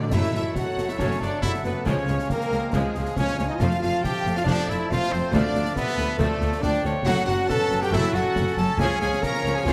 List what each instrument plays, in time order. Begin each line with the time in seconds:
Already playing: cello section D3
0.00 french horn section D4, trumpet D4, violin section D5, flute D5
0.11 double bass section F#1, cello section F#2, harp F#2, trombone section F#3 A3, viola section F#3 A3, french horn section E4, trumpet E4, clarinet C#5, violin section E5, cor anglais A5, concert bass drum, snare, crash
0.15 flute E5
0.23 snare
0.32 double bass section F#1, cello section F#2, viola section F#3 A3, harp A3, french horn section E4, trumpet E4, violin section E5, flute E5, snare
0.56 harp C#4, french horn section F#4, trumpet F#4, violin section F#5, flute F#5, concert bass drum, snare
0.77 double bass section F#1, cello section F#2, viola section F#3 A3, harp A3, snare
0.88 french horn section E4, trumpet E4, violin section E5, flute E5, snare
0.98 double bass section F#1, cello section F#2, harp C#3, viola section F#3 A3, french horn section C#4, trumpet C#4, violin section C#5, flute C#5, concert bass drum, snare
1.11 snare
1.20 double bass section F#1, cello section F#2, viola section F#3 A3, harp A3, french horn section D4, trumpet D4, violin section D5, flute D5, snare
1.42 double bass section F#1, cello section F#2, viola section F#3 A3, harp C#4, trumpet E4, french horn section E4, violin section E5, flute E5, clarinet F#5, concert bass drum, snare
1.54 snare
1.64 double bass section F#1, cello section F#2, viola section F#3 A3, harp A3, trumpet B3, french horn section B3, flute B4, violin section B4, snare
1.85 double bass section C#2, cello section C#2, harp C#3, trombone section F3 G#3, viola section F3 G#3, trumpet C#4, french horn section C#4, flute C#5, violin section C#5, clarinet F5, cor anglais G#5, concert bass drum, snare
2.08 double bass section C#2, cello section C#2, viola section F3 G#3, harp C#4, snare
2.19 snare
2.30 trumpet A#3, french horn section A#3, harp F4, flute A#4, violin section A#4, cor anglais G5, concert bass drum, snare
2.41 snare
2.51 cello section C#2, double bass section C#2, viola section F3 G#3, harp C#4, snare
2.73 double bass section C#2, cello section C#2, viola section F3 G#3, trumpet G#3, french horn section G#3, harp G#3, violin section G#4, flute G#4, cor anglais F5, concert bass drum, snare
2.95 cello section C#2, double bass section C#2, viola section F3 G#3, harp C#4, snare
3.06 snare
3.16 cello section C#2, double bass section C#2, viola section F3 G#3, french horn section C#4, trumpet C#4, harp F4, violin section C#5, flute C#5, clarinet F5, cor anglais G#5, concert bass drum, snare
3.27 snare
3.37 cello section C#2, double bass section C#2, viola section F3 G#3, french horn section C#4, trumpet C#4, harp C#4, flute C#5, violin section C#5, snare
3.41 violin section C#5
3.48 french horn section D#4, trumpet D#4, flute D#5, violin section D#5
3.56 french horn section F4, trumpet F4
3.60 double bass section F1, cello section F2, viola section F3 A3, harp F3, trombone section A3, violin section F5, flute F5, cor anglais A5, concert bass drum, snare, crash
3.71 snare
3.79 double bass section F1, viola section A3, harp C4, french horn section F4, trumpet F4, flute F5, violin section F5, snare
3.83 cello section F2, viola section F3
4.03 harp F4, french horn section G4, trumpet G4, flute G5, violin section G5, concert bass drum, snare
4.26 double bass section F1, cello section F2, viola section F3 A3, harp C4, snare
4.32 flute F5, violin section F5
4.36 trumpet F4, french horn section F4, violin section F5, snare
4.44 double bass section F1, cello section F2, french horn section D4, trumpet D4, flute D5, violin section D5, concert bass drum, snare
4.48 viola section F3 A3, harp A3, clarinet D5
4.59 snare
4.67 double bass section F1, cello section F2, viola section F3 A3, harp C4, trumpet E4, french horn section E4, flute E5, violin section E5, snare
4.90 double bass section F1, cello section F2, viola section F3 A3, french horn section F4, trumpet F4, clarinet C5, flute F5, violin section F5, concert bass drum, snare
5.03 snare
5.11 double bass section F1, cello section F2, viola section F3 A3, french horn section C4, harp C4, trumpet C4, flute C5, violin section C5, snare
5.32 double bass section D2, cello section D2, harp D3, viola section F3 A3, trombone section F3, french horn section D4, trumpet D4, flute D5, violin section D5, clarinet F5, cor anglais A5, concert bass drum, snare
5.54 double bass section D2, cello section D2, viola section F3 A3, harp D4, snare
5.65 snare
5.76 trumpet B3, french horn section B3, harp F4, flute B4, violin section B4, clarinet E5, concert bass drum, snare
5.87 snare
5.97 double bass section D2, cello section D2, viola section F3 A3, harp D4, snare
6.19 double bass section D2, cello section D2, viola section F3 A3, french horn section A3, trumpet A3, harp A3, flute A4, violin section A4, clarinet D5, concert bass drum, snare
6.41 cello section D2, double bass section D2, viola section F3 A3, harp D4, snare
6.52 snare
6.61 cello section D2, double bass section D2, viola section F3 A3, french horn section D4, trumpet D4, harp F4, violin section D5, flute D5, clarinet D5, cor anglais G5, concert bass drum, snare
6.74 snare
6.84 double bass section D2, cello section D2, viola section F3 A3, harp D4, clarinet C#5, snare
7.05 double bass section F#1, cello section F#2, harp F#2, viola section F#3 A3, trombone section F#3 C#4, french horn section F#4, trumpet F#4, violin section F#5, flute F#5, cor anglais F#5, concert bass drum, snare, crash
7.18 snare
7.27 double bass section F#1, cello section F#2, viola section F#3 A3, harp F#3, trumpet F#4, french horn section F#4, violin section F#5, flute F#5, snare
7.47 harp C#4, french horn section A4, trumpet A4, clarinet B4, cor anglais F#5, violin section A5, flute A5, concert bass drum, snare
7.70 double bass section F#1, cello section F#2, viola section F#3 A3, harp F#3, snare
7.81 trumpet G4, french horn section G4, violin section G5, flute G5, snare
7.91 double bass section F#1, cello section F#2, harp C#3, viola section F#3 A3, french horn section E4, trumpet E4, clarinet A4, flute E5, violin section E5, cor anglais A5, concert bass drum, snare
8.04 snare
8.13 double bass section F#1, cello section F#2, viola section F#3 A3, harp F#3, french horn section F#4, trumpet F#4, violin section F#5, flute F#5, snare
8.36 double bass section F#1, cello section F#2, viola section F#3 A3, harp C#4, concert bass drum, snare
8.47 snare
8.56 double bass section F#1, cello section F#2, harp F#3, viola section F#3 A3, french horn section A4, trumpet A4, violin section A5, flute A5, snare
8.78 double bass section C#2, cello section C#2, harp C#3, trombone section F3, viola section F3 C#4, french horn section G#4, trumpet G#4, clarinet C#5, cor anglais F5, flute G#5, violin section G#5, concert bass drum, snare
8.99 double bass section C#2, cello section C#2, harp C#4, french horn section G#4, trumpet G#4, violin section G#5, flute G#5, snare
9.04 viola section F3 C#4
9.13 snare
9.22 harp F4, french horn section A#4, trumpet A#4, cor anglais F5, violin section A#5, flute A#5, concert bass drum, snare
9.34 snare
9.44 cello section C#2, double bass section C#2, viola section F3 C#4, harp C#4, snare
9.55 french horn section G#4, trumpet G#4, flute G#5, violin section G#5
9.65 double bass section C#2, cello section C#2, viola section F3 C#4, harp G#3, french horn section F4, trumpet F4, flute F5, violin section F5, cor anglais G#5, concert bass drum, snare